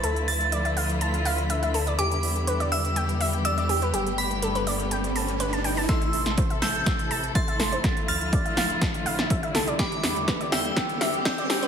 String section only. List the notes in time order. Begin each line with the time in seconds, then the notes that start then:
Already playing: A3 E4
0.04 D3 F3 F4
1.99 G3 B3 G4
3.94 D3 A3
5.89 C3 E3 A3 E4 A4
7.84 D3 F3 F4
9.79 G3 B3 G4